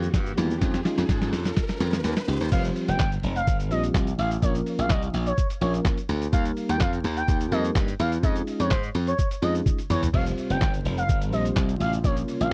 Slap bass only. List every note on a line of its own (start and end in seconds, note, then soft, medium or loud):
0.14 0.31 G2 loud
0.38 0.55 E2 medium
0.61 0.79 F2 loud
0.98 1.06 F2 loud
1.09 1.33 G#2 loud
1.33 1.50 F2 loud
1.80 1.98 F2 loud
2.04 2.14 D#2 loud
2.28 2.37 C#2 loud
2.41 2.49 D#2 medium
2.52 2.69 F1 loud
2.88 2.97 F1 medium
2.99 3.17 G1 loud
3.23 3.41 F1 medium
3.47 3.71 G1 loud
3.71 3.89 A#1 medium
3.95 4.12 C2 loud
4.18 4.36 A1 loud
4.42 4.60 A#1 loud
4.79 4.87 A#1 loud
4.90 5.08 C2 medium
5.14 5.31 A#1 medium
5.61 5.79 A#1 loud
6.09 6.27 D2 loud
6.33 6.50 D#2 loud
6.69 6.78 D#2 loud
6.80 6.98 F2 loud
7.04 7.22 D#2 loud
7.28 7.46 D#2 loud
7.52 7.69 F2 loud
7.75 7.93 G2 medium
8.00 8.17 E2 loud
8.23 8.41 F2 loud
8.60 8.68 F2 loud
8.95 9.12 F2 medium
9.42 9.60 F2 medium
9.90 10.08 E2 medium
10.14 10.31 F1 loud
10.50 10.58 F1 medium
10.61 10.79 G1 loud
10.85 11.03 F1 medium
11.09 11.33 G1 loud
11.33 11.50 A#1 loud
11.56 11.74 C2 loud
11.80 11.98 A1 loud
12.04 12.22 A#1 loud
12.41 12.49 A#1 medium